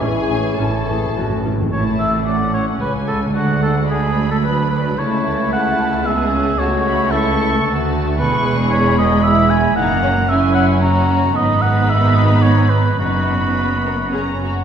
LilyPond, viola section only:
\new Staff \with { instrumentName = "Viola section" } { \time 3/4 \key a \major \tempo 4 = 111 <e cis'>8 <e cis'>8 <e cis'>8 <e cis'>8 <e cis'>8 <e cis'>8 | a2 gis4~ | gis2 fis4 | a8 a4. b8 cis'8 |
a2 a4 | \key fis \mixolydian gis2. | ais4 cis'4 cis'4 | b2. |
b2 cis'8 r8 | }